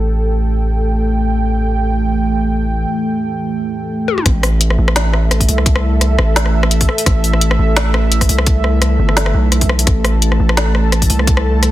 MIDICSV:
0, 0, Header, 1, 4, 480
1, 0, Start_track
1, 0, Key_signature, 0, "minor"
1, 0, Tempo, 350877
1, 64, Time_signature, 4, 2, 24, 8
1, 16025, End_track
2, 0, Start_track
2, 0, Title_t, "Analog synth pad"
2, 0, Program_c, 0, 89
2, 0, Note_on_c, 0, 52, 78
2, 0, Note_on_c, 0, 57, 73
2, 0, Note_on_c, 0, 69, 72
2, 0, Note_on_c, 0, 79, 90
2, 5768, Note_off_c, 0, 52, 0
2, 5768, Note_off_c, 0, 57, 0
2, 5768, Note_off_c, 0, 69, 0
2, 5795, Note_off_c, 0, 79, 0
2, 5821, Note_on_c, 0, 52, 84
2, 5822, Note_on_c, 0, 69, 76
2, 5822, Note_on_c, 0, 76, 90
2, 5825, Note_on_c, 0, 57, 76
2, 13474, Note_off_c, 0, 76, 0
2, 13501, Note_on_c, 0, 81, 91
2, 16025, Note_off_c, 0, 52, 0
2, 16025, Note_off_c, 0, 57, 0
2, 16025, Note_off_c, 0, 69, 0
2, 16025, Note_off_c, 0, 81, 0
2, 16025, End_track
3, 0, Start_track
3, 0, Title_t, "808-style bass"
3, 0, Program_c, 1, 38
3, 0, Note_on_c, 1, 33, 87
3, 3904, Note_off_c, 1, 33, 0
3, 5824, Note_on_c, 1, 33, 99
3, 6526, Note_off_c, 1, 33, 0
3, 6546, Note_on_c, 1, 33, 99
3, 7487, Note_off_c, 1, 33, 0
3, 7506, Note_on_c, 1, 36, 99
3, 8448, Note_off_c, 1, 36, 0
3, 8463, Note_on_c, 1, 33, 99
3, 9406, Note_off_c, 1, 33, 0
3, 9663, Note_on_c, 1, 33, 99
3, 10366, Note_off_c, 1, 33, 0
3, 10383, Note_on_c, 1, 33, 98
3, 11326, Note_off_c, 1, 33, 0
3, 11343, Note_on_c, 1, 36, 100
3, 12286, Note_off_c, 1, 36, 0
3, 12302, Note_on_c, 1, 31, 99
3, 12765, Note_off_c, 1, 31, 0
3, 12781, Note_on_c, 1, 35, 95
3, 13485, Note_off_c, 1, 35, 0
3, 13503, Note_on_c, 1, 33, 99
3, 14206, Note_off_c, 1, 33, 0
3, 14225, Note_on_c, 1, 33, 100
3, 15167, Note_off_c, 1, 33, 0
3, 15185, Note_on_c, 1, 36, 99
3, 16025, Note_off_c, 1, 36, 0
3, 16025, End_track
4, 0, Start_track
4, 0, Title_t, "Drums"
4, 5583, Note_on_c, 9, 48, 58
4, 5714, Note_on_c, 9, 47, 71
4, 5719, Note_off_c, 9, 48, 0
4, 5823, Note_on_c, 9, 36, 123
4, 5823, Note_on_c, 9, 37, 54
4, 5823, Note_on_c, 9, 42, 83
4, 5851, Note_off_c, 9, 47, 0
4, 5960, Note_off_c, 9, 36, 0
4, 5960, Note_off_c, 9, 37, 0
4, 5960, Note_off_c, 9, 42, 0
4, 6064, Note_on_c, 9, 37, 88
4, 6064, Note_on_c, 9, 46, 38
4, 6201, Note_off_c, 9, 37, 0
4, 6201, Note_off_c, 9, 46, 0
4, 6303, Note_on_c, 9, 42, 72
4, 6436, Note_on_c, 9, 37, 57
4, 6439, Note_off_c, 9, 42, 0
4, 6573, Note_off_c, 9, 37, 0
4, 6675, Note_on_c, 9, 37, 81
4, 6784, Note_on_c, 9, 38, 123
4, 6784, Note_on_c, 9, 42, 87
4, 6812, Note_off_c, 9, 37, 0
4, 6920, Note_off_c, 9, 38, 0
4, 6920, Note_off_c, 9, 42, 0
4, 7025, Note_on_c, 9, 37, 57
4, 7162, Note_off_c, 9, 37, 0
4, 7265, Note_on_c, 9, 37, 84
4, 7265, Note_on_c, 9, 42, 71
4, 7394, Note_on_c, 9, 36, 62
4, 7397, Note_on_c, 9, 46, 67
4, 7402, Note_off_c, 9, 37, 0
4, 7402, Note_off_c, 9, 42, 0
4, 7505, Note_off_c, 9, 46, 0
4, 7505, Note_on_c, 9, 46, 66
4, 7530, Note_off_c, 9, 36, 0
4, 7635, Note_on_c, 9, 37, 57
4, 7641, Note_off_c, 9, 46, 0
4, 7742, Note_on_c, 9, 36, 126
4, 7744, Note_on_c, 9, 42, 84
4, 7772, Note_off_c, 9, 37, 0
4, 7874, Note_on_c, 9, 37, 83
4, 7879, Note_off_c, 9, 36, 0
4, 7881, Note_off_c, 9, 42, 0
4, 8010, Note_off_c, 9, 37, 0
4, 8224, Note_on_c, 9, 37, 55
4, 8224, Note_on_c, 9, 42, 70
4, 8361, Note_off_c, 9, 37, 0
4, 8361, Note_off_c, 9, 42, 0
4, 8462, Note_on_c, 9, 37, 81
4, 8599, Note_off_c, 9, 37, 0
4, 8702, Note_on_c, 9, 38, 125
4, 8702, Note_on_c, 9, 46, 66
4, 8832, Note_on_c, 9, 37, 54
4, 8839, Note_off_c, 9, 38, 0
4, 8839, Note_off_c, 9, 46, 0
4, 8969, Note_off_c, 9, 37, 0
4, 9072, Note_on_c, 9, 37, 82
4, 9180, Note_on_c, 9, 42, 71
4, 9208, Note_off_c, 9, 37, 0
4, 9313, Note_on_c, 9, 46, 65
4, 9314, Note_on_c, 9, 36, 64
4, 9317, Note_off_c, 9, 42, 0
4, 9422, Note_on_c, 9, 37, 53
4, 9449, Note_off_c, 9, 46, 0
4, 9450, Note_off_c, 9, 36, 0
4, 9552, Note_on_c, 9, 46, 67
4, 9558, Note_off_c, 9, 37, 0
4, 9663, Note_on_c, 9, 36, 127
4, 9663, Note_on_c, 9, 37, 77
4, 9663, Note_on_c, 9, 42, 81
4, 9689, Note_off_c, 9, 46, 0
4, 9800, Note_off_c, 9, 36, 0
4, 9800, Note_off_c, 9, 37, 0
4, 9800, Note_off_c, 9, 42, 0
4, 9903, Note_on_c, 9, 46, 36
4, 10034, Note_on_c, 9, 37, 52
4, 10040, Note_off_c, 9, 46, 0
4, 10142, Note_on_c, 9, 42, 70
4, 10171, Note_off_c, 9, 37, 0
4, 10273, Note_on_c, 9, 37, 79
4, 10279, Note_off_c, 9, 42, 0
4, 10410, Note_off_c, 9, 37, 0
4, 10623, Note_on_c, 9, 37, 53
4, 10623, Note_on_c, 9, 38, 127
4, 10623, Note_on_c, 9, 42, 85
4, 10760, Note_off_c, 9, 37, 0
4, 10760, Note_off_c, 9, 38, 0
4, 10760, Note_off_c, 9, 42, 0
4, 10863, Note_on_c, 9, 37, 78
4, 11000, Note_off_c, 9, 37, 0
4, 11103, Note_on_c, 9, 42, 67
4, 11233, Note_on_c, 9, 36, 63
4, 11233, Note_on_c, 9, 37, 51
4, 11233, Note_on_c, 9, 46, 62
4, 11240, Note_off_c, 9, 42, 0
4, 11343, Note_off_c, 9, 46, 0
4, 11343, Note_on_c, 9, 46, 65
4, 11370, Note_off_c, 9, 36, 0
4, 11370, Note_off_c, 9, 37, 0
4, 11471, Note_on_c, 9, 37, 79
4, 11479, Note_off_c, 9, 46, 0
4, 11580, Note_on_c, 9, 42, 76
4, 11582, Note_on_c, 9, 36, 126
4, 11608, Note_off_c, 9, 37, 0
4, 11717, Note_off_c, 9, 42, 0
4, 11719, Note_off_c, 9, 36, 0
4, 11820, Note_on_c, 9, 37, 53
4, 11957, Note_off_c, 9, 37, 0
4, 12061, Note_on_c, 9, 37, 76
4, 12061, Note_on_c, 9, 42, 67
4, 12198, Note_off_c, 9, 37, 0
4, 12198, Note_off_c, 9, 42, 0
4, 12431, Note_on_c, 9, 37, 50
4, 12540, Note_on_c, 9, 38, 127
4, 12540, Note_on_c, 9, 46, 66
4, 12568, Note_off_c, 9, 37, 0
4, 12669, Note_on_c, 9, 37, 76
4, 12677, Note_off_c, 9, 38, 0
4, 12677, Note_off_c, 9, 46, 0
4, 12805, Note_off_c, 9, 37, 0
4, 13021, Note_on_c, 9, 37, 53
4, 13021, Note_on_c, 9, 42, 67
4, 13151, Note_on_c, 9, 46, 64
4, 13153, Note_on_c, 9, 36, 64
4, 13158, Note_off_c, 9, 37, 0
4, 13158, Note_off_c, 9, 42, 0
4, 13262, Note_on_c, 9, 37, 77
4, 13288, Note_off_c, 9, 46, 0
4, 13290, Note_off_c, 9, 36, 0
4, 13392, Note_on_c, 9, 46, 65
4, 13398, Note_off_c, 9, 37, 0
4, 13501, Note_on_c, 9, 37, 50
4, 13501, Note_on_c, 9, 42, 75
4, 13503, Note_on_c, 9, 36, 120
4, 13528, Note_off_c, 9, 46, 0
4, 13638, Note_off_c, 9, 37, 0
4, 13638, Note_off_c, 9, 42, 0
4, 13640, Note_off_c, 9, 36, 0
4, 13741, Note_on_c, 9, 37, 78
4, 13741, Note_on_c, 9, 46, 38
4, 13878, Note_off_c, 9, 37, 0
4, 13878, Note_off_c, 9, 46, 0
4, 13982, Note_on_c, 9, 42, 64
4, 14114, Note_on_c, 9, 37, 51
4, 14119, Note_off_c, 9, 42, 0
4, 14251, Note_off_c, 9, 37, 0
4, 14354, Note_on_c, 9, 37, 75
4, 14463, Note_on_c, 9, 38, 121
4, 14463, Note_on_c, 9, 42, 80
4, 14491, Note_off_c, 9, 37, 0
4, 14600, Note_off_c, 9, 38, 0
4, 14600, Note_off_c, 9, 42, 0
4, 14703, Note_on_c, 9, 37, 51
4, 14840, Note_off_c, 9, 37, 0
4, 14943, Note_on_c, 9, 37, 79
4, 14943, Note_on_c, 9, 42, 63
4, 15075, Note_on_c, 9, 36, 62
4, 15075, Note_on_c, 9, 46, 67
4, 15080, Note_off_c, 9, 37, 0
4, 15080, Note_off_c, 9, 42, 0
4, 15182, Note_off_c, 9, 46, 0
4, 15182, Note_on_c, 9, 46, 67
4, 15212, Note_off_c, 9, 36, 0
4, 15313, Note_on_c, 9, 37, 52
4, 15319, Note_off_c, 9, 46, 0
4, 15424, Note_on_c, 9, 36, 119
4, 15424, Note_on_c, 9, 42, 75
4, 15450, Note_off_c, 9, 37, 0
4, 15556, Note_on_c, 9, 37, 82
4, 15560, Note_off_c, 9, 36, 0
4, 15560, Note_off_c, 9, 42, 0
4, 15692, Note_off_c, 9, 37, 0
4, 15905, Note_on_c, 9, 37, 54
4, 15905, Note_on_c, 9, 42, 65
4, 16025, Note_off_c, 9, 37, 0
4, 16025, Note_off_c, 9, 42, 0
4, 16025, End_track
0, 0, End_of_file